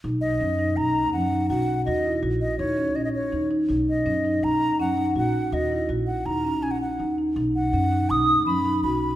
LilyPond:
<<
  \new Staff \with { instrumentName = "Flute" } { \time 5/4 \key b \major \tempo 4 = 164 r8 dis''4. ais''4 fis''4 fis''4 | dis''4 r8 dis''8 cis''4 dis''16 dis''16 cis''4 r8 | r8 dis''4. ais''4 fis''4 fis''4 | dis''4 r8 fis''8 ais''4 gis''16 fis''16 fis''4 r8 |
r8 fis''4. dis'''4 b''4 b''4 | }
  \new Staff \with { instrumentName = "Marimba" } { \time 5/4 \key b \major dis'4 cis'8 dis'8 dis'4 cis'8 dis'8 fis'4 | fis'8 e'8 fis'4 dis'8 cis'8 cis'4 dis'8 dis'8 | dis'4 cis'8 dis'8 dis'4 cis'8 dis'8 fis'4 | fis'8 e'8 fis'4 dis'8 cis'8 cis'4 dis'8 dis'8 |
dis'4 cis'8 dis'8 dis'4 cis'8 dis'8 fis'4 | }
  \new Staff \with { instrumentName = "Upright bass" } { \clef bass \time 5/4 \key b \major b,,4 fis,4 b,,4 fis,4 b,,4 | dis,4 ais,,4 dis,4 ais,,4 dis,4 | b,,4 fis,4 b,,4 fis,4 ais,,4 | dis,4 ais,,4 dis,4 ais,,4 dis,4 |
b,,4 fis,4 b,,4 fis,4 b,,4 | }
>>